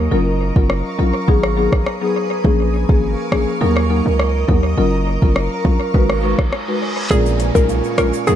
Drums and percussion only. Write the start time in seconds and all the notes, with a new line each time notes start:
0.56 kick
0.70 cross-stick
1.28 kick
1.43 cross-stick
1.72 kick, cross-stick
1.86 cross-stick
2.45 kick
2.89 kick
3.32 cross-stick
3.77 cross-stick
4.19 cross-stick
4.48 kick
5.22 kick
5.36 cross-stick
5.65 kick
5.94 kick
6.10 cross-stick
6.38 kick, cross-stick
6.53 cross-stick
7.11 kick, shaker
7.26 shaker
7.40 closed hi-hat, shaker
7.55 kick, shaker
7.69 shaker
7.84 shaker
7.98 cross-stick, closed hi-hat, shaker
8.13 shaker
8.27 shaker